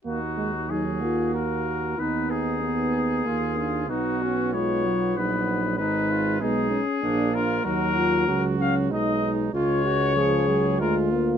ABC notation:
X:1
M:3/4
L:1/8
Q:1/4=95
K:Ebm
V:1 name="Trumpet"
G2 A2 B2 | c A4- A | ^F2 d2 =B2 | c2 A3 B |
[K:C#mix] A3 e d z | c4 A z |]
V:2 name="Trumpet"
E2 G4 | E4 F F | ^D _D =B,4 | E F E z =D F |
[K:C#mix] F2 F2 D2 | E F G2 E2 |]
V:3 name="French horn"
z2 E F G2 | E2 C2 B, =D | ^D ^F =F2 D2 | E2 C D =D z |
[K:C#mix] D E F C D2 | E F G2 E2 |]
V:4 name="Euphonium" clef=bass
B, A, G, B,3 | C2 C2 B,2 | =B,2 A, ^F, F,2 | A,2 A, z B,2 |
[K:C#mix] F,2 F,2 G,2 | G,2 E, F, G, A, |]
V:5 name="Tuba" clef=bass
E,,6 | E,,4 E,,2 | =B,,,4 _B,,,2 | A,,,2 C,, z B,,,2 |
[K:C#mix] D,,2 C,,2 B,,,2 | C,,4 =D,,2 |]